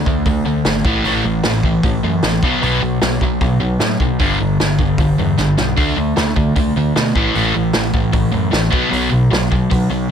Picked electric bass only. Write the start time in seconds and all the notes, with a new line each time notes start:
0.06 D2
0.26 D2
0.45 D2
0.65 G#1
0.84 A1
1.05 A1
1.24 A1
1.44 A1
1.63 A1
1.84 A1
2.04 F#2
2.23 A1
2.43 B1
2.62 B1
2.82 B1
3.02 B1
3.21 B1
3.41 B1
3.60 B1
3.79 A2
4.00 B1
4.20 G1
4.41 G1
4.60 G1
4.79 G1
4.98 G1
5.19 E2
5.38 G1
5.58 B1
5.78 D2
5.97 D2
6.17 D2
6.36 D2
6.56 D2
6.76 D2
6.97 B2
7.15 A1
7.36 A1
7.55 A1
7.75 A1
7.94 A1
8.13 A1
8.34 F#2
8.52 A1
8.73 B1
8.92 B1
9.12 B1
9.31 B1
9.52 B1
9.71 B1
9.90 B1